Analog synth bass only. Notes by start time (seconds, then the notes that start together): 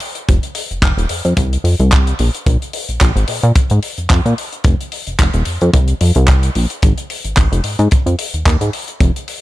0.29 F1
0.71 F1
0.82 F1
0.97 D#1
1.10 F2
1.25 F2
1.37 C2
1.64 F2
1.80 C2
2.19 A#1
2.46 A#1
2.89 A#1
3.01 A#1
3.16 G#1
3.28 A#2
3.43 A#2
3.71 G#2
3.98 F2
4.10 F2
4.26 A#2
4.65 F1
5.07 F1
5.19 F1
5.34 D#1
5.46 F2
5.62 F2
5.73 C2
6.01 F2
6.16 C2
6.56 A#1
6.83 G#1
7.24 G#1
7.37 G#1
7.52 F1
7.64 G#2
7.79 G#2
8.06 F2
8.34 D#2
8.46 D#2
8.61 G#2
9.00 F1